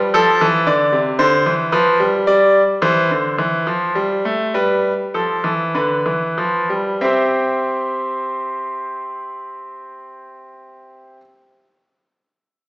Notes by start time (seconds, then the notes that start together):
Already playing: G3
0.14 F3 A4
0.41 E3
0.67 D3 D5
0.92 C3
1.19 D3 C5
1.46 E3
1.72 F3 B4
2.00 G3
2.27 G3 D5
2.82 E3 C5
3.11 D3
3.39 E3
3.67 F3
3.95 G3
4.25 A3
4.54 G3 B4
5.14 F3 A4
5.44 E3
5.75 D3 B4
6.06 E3
6.38 F3
6.70 G3
7.01 C4 G4 C5 E5